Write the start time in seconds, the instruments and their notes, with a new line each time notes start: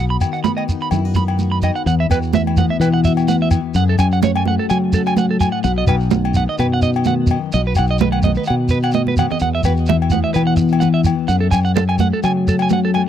Already playing: fingered electric bass B1, steel-string acoustic guitar B2 B3
0.00 steel-string acoustic guitar F#4
0.10 clean electric guitar B5
0.21 steel-string acoustic guitar D#3, low agogo, shekere
0.33 clean electric guitar F#5, shekere
0.44 steel-string acoustic guitar B3, clean electric guitar B5, high conga, shekere
0.57 clean electric guitar D#5, low agogo
0.68 muted conga, shekere
0.72 steel-string acoustic guitar D#4
0.81 clean electric guitar B5, shekere
0.91 fingered electric bass F#2, steel-string acoustic guitar E4, muted conga, low conga, low agogo, shekere
1.05 steel-string acoustic guitar F#4
1.14 steel-string acoustic guitar B3, clean electric guitar B5, muted conga, high conga, shekere
1.28 low agogo
1.38 steel-string acoustic guitar F#4, high conga, shekere
1.52 clean electric guitar B5
1.62 steel-string acoustic guitar D#4, clean electric guitar D#5, low conga, low agogo, shekere
1.75 clean electric guitar F#5, shekere
1.86 fingered electric bass E2, steel-string acoustic guitar E2, clean electric guitar F#5, muted steel-string acoustic guitar stroke, muted conga, shekere
2.00 clean electric guitar E5
2.10 fingered electric bass E2, steel-string acoustic guitar F#4, clean electric guitar B4, muted conga, low agogo, shekere
2.22 shekere
2.33 steel-string acoustic guitar E3, clean electric guitar E5, high conga, shekere
2.47 low agogo
2.57 steel-string acoustic guitar B3, clean electric guitar F#5, high conga, shekere
2.70 clean electric guitar E5
2.80 steel-string acoustic guitar B2, fingered electric bass E3, clean electric guitar B4, low agogo, shekere
2.94 clean electric guitar F#5
3.04 steel-string acoustic guitar F#4, clean electric guitar E5, shekere
3.17 low agogo, shekere
3.28 steel-string acoustic guitar E3, clean electric guitar F#5, high conga, shekere
3.42 clean electric guitar E5
3.51 steel-string acoustic guitar B3, muted conga, low agogo, shekere
3.74 fingered electric bass F#2, steel-string acoustic guitar F#2 G#4, clean electric guitar F#5, muted conga, shekere
3.89 clean electric guitar A4
3.99 fingered electric bass F#2, clean electric guitar G#5, muted conga, low agogo, shekere
4.12 clean electric guitar F#5, shekere
4.22 steel-string acoustic guitar F#3, clean electric guitar C#5, high conga, shekere
4.36 clean electric guitar G#5, low agogo
4.46 steel-string acoustic guitar A3, clean electric guitar F#5, high conga
4.59 clean electric guitar A4
4.70 steel-string acoustic guitar C#3, fingered electric bass F#3, clean electric guitar G#5, muted conga, low agogo, shekere
4.93 steel-string acoustic guitar C#4, clean electric guitar A4, shekere
5.06 clean electric guitar G#5, low agogo, shekere
5.16 steel-string acoustic guitar G#2, clean electric guitar F#5, high conga, shekere
5.31 clean electric guitar A4
5.40 steel-string acoustic guitar A2, clean electric guitar G#5, muted conga, low agogo, shekere
5.52 clean electric guitar F#5
5.64 fingered electric bass B1, steel-string acoustic guitar B2 F#4, clean electric guitar F#5, muted conga, shekere
5.78 clean electric guitar D#5
5.87 fingered electric bass B1, steel-string acoustic guitar D#4, clean electric guitar B4, muted conga, low agogo, shekere
6.00 shekere
6.10 steel-string acoustic guitar D#3, high conga, shekere
6.25 low agogo
6.34 steel-string acoustic guitar B3, clean electric guitar F#5, shekere
6.49 clean electric guitar D#5
6.58 steel-string acoustic guitar F#2, fingered electric bass B2, clean electric guitar B4, muted conga, low agogo, shekere
6.73 clean electric guitar F#5
6.82 steel-string acoustic guitar D#4, clean electric guitar D#5, shekere
6.93 low agogo, shekere
7.04 steel-string acoustic guitar D#3, clean electric guitar F#5, high conga, shekere
7.27 steel-string acoustic guitar B3, muted conga, shekere
7.31 low agogo
7.52 fingered electric bass B1, steel-string acoustic guitar B2 F#4, clean electric guitar D#5, muted conga, shekere
7.67 clean electric guitar B4
7.75 clean electric guitar F#5, muted conga, low agogo, shekere
7.79 fingered electric bass B1, steel-string acoustic guitar D#4
7.87 clean electric guitar D#5, shekere
7.98 steel-string acoustic guitar D#3, clean electric guitar B4, high conga, shekere
8.12 clean electric guitar F#5, low agogo
8.22 clean electric guitar D#5, high conga, shekere
8.27 steel-string acoustic guitar B3
8.35 clean electric guitar B4, shekere
8.44 clean electric guitar F#5, low agogo, shekere
8.48 fingered electric bass B2, muted steel-string acoustic guitar stroke, muted conga
8.68 clean electric guitar B4, shekere
8.73 steel-string acoustic guitar D#4
8.82 clean electric guitar F#5, low agogo, shekere
8.92 clean electric guitar D#5, high conga, shekere
8.96 steel-string acoustic guitar D#3
9.07 clean electric guitar B4, high conga
9.16 steel-string acoustic guitar B3, clean electric guitar F#5, low conga, low agogo, shekere
9.30 clean electric guitar D#5, low conga, shekere
9.39 fingered electric bass E2, steel-string acoustic guitar E2 F#4, clean electric guitar F#5, muted conga, shekere
9.55 clean electric guitar E5
9.63 fingered electric bass E2, steel-string acoustic guitar F#4, clean electric guitar B4, muted conga, low agogo, shekere
9.77 shekere
9.86 steel-string acoustic guitar E3, clean electric guitar E5, high conga, shekere
10.02 low agogo
10.10 steel-string acoustic guitar B3, clean electric guitar F#5, high conga, shekere
10.24 clean electric guitar E5
10.34 steel-string acoustic guitar B2, fingered electric bass E3, clean electric guitar B4, low agogo, shekere
10.47 clean electric guitar F#5
10.56 muted clean electric guitar stroke, shekere
10.60 steel-string acoustic guitar F#4
10.69 shekere
10.73 low agogo
10.80 steel-string acoustic guitar E3, clean electric guitar F#5, high conga, shekere
10.94 clean electric guitar E5
11.04 steel-string acoustic guitar B3, muted conga, low agogo, shekere
11.28 fingered electric bass F#2, steel-string acoustic guitar F#2 G#4, clean electric guitar F#5, muted conga, shekere
11.40 clean electric guitar A4
11.51 fingered electric bass F#2, steel-string acoustic guitar C#4, clean electric guitar G#5, low agogo, shekere
11.65 clean electric guitar F#5, shekere
11.76 steel-string acoustic guitar F#3, clean electric guitar A4, high conga, shekere
11.89 clean electric guitar G#5, low agogo
11.98 steel-string acoustic guitar A3, clean electric guitar F#5, high conga, shekere
12.13 clean electric guitar A4
12.23 steel-string acoustic guitar C#3, fingered electric bass F#3, clean electric guitar G#5, muted conga, low agogo, shekere
12.48 steel-string acoustic guitar C#4, clean electric guitar A4, shekere
12.59 clean electric guitar G#5, low agogo, shekere
12.69 steel-string acoustic guitar F#3, clean electric guitar F#5, high conga, shekere
12.85 clean electric guitar A4
12.94 steel-string acoustic guitar A3, clean electric guitar G#5, muted conga, low agogo